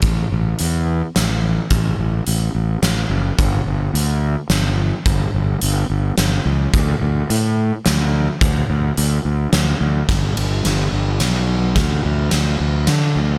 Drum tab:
RD |------|------|------|------|
HH |x-x-x-|x-x-x-|x-x-x-|x-x-x-|
SD |----o-|----o-|----o-|----o-|
BD |o-----|o-----|o-----|o-----|

RD |------|------|xxx-x-|x-x-x-|
HH |x-x-x-|x-x-x-|------|------|
SD |----o-|----o-|o-o-o-|o-o-o-|
BD |o-----|o-----|o-----|o-----|